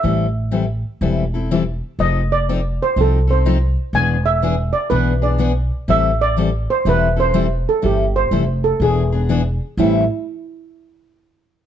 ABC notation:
X:1
M:4/4
L:1/8
Q:"Swing" 1/4=123
K:Am
V:1 name="Steel pan"
e6- e z | _e d2 c A c z2 | ^g e2 d B d z2 | e d2 c B c2 A |
G c2 A ^G3 z | E z6 z |]
V:2 name="Steel-string acoustic guitar"
[E,G,CEA] z [E,G,CEA] z [E,G,CEA] [CEA] [E,G,CEA] z | [F,C_EA] z [F,CEA] z [F,CEA] [CEA] [F,CEA] z | [E,B,D^G] z [E,B,DG] z [E,B,DG] [B,DG] [E,B,DG] z | [E,G,CEA] z [E,G,CEA] z [E,G,CEA] [CEA] [E,G,CEA] z |
[E,G,CEA] z [E,G,CEA] z [E,B,D^G] [B,DG] [E,B,DG] z | [A,,E,G,CEA] z6 z |]
V:3 name="Upright bass" clef=bass
A,,,4 E,,,4 | F,,,4 C,,4 | E,,,4 B,,,4 | A,,,4 E,,,4 |
G,,,2 F,,,2 E,,,4 | A,,, z6 z |]